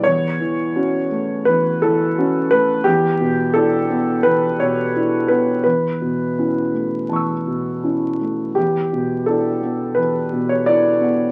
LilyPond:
<<
  \new Staff \with { instrumentName = "Grand piano" } { \time 4/4 \key e \dorian \tempo 4 = 85 << { r1 | r1 | r2 <a'' cis''' e'''>2 | r1 | } \\ { cis''2 b'8 a'4 b'8 | g'4 a'4 b'8 cis''4 b'8 | b'2.~ b'8 r8 | g'4 a'4 b'8. cis''16 d''4 | } >> }
  \new Staff \with { instrumentName = "Grand piano" } { \time 4/4 \key e \dorian e,8 e8 <cis' fis'>8 a8 e,8 e8 <cis' fis'>8 a8 | e,8 b,8 <d' e'>8 b8 e,8 b,8 <d' e'>8 b8 | e,8 b,8 <cis' e'>8 a8 e,8 b,8 <cis' e'>8 a8 | e,8 b,8 <d' e'>8 b8 e,8 b,8 <d' e'>8 b8 | }
>>